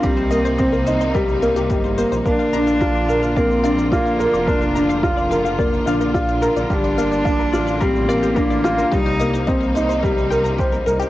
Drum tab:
SH |xxxxxxxxxxxxxxxx|xxxxxxxxxxxxxxxx|xxxxxxxxxxxxxxxx|xxxxxxxxxxxxxxxx|
BD |o---o---o---o---|o---o---o---o---|o---o---o---o---|o---o---o---o---|

SH |xxxxxxxxxxxxxxxx|
BD |o---o---o---o---|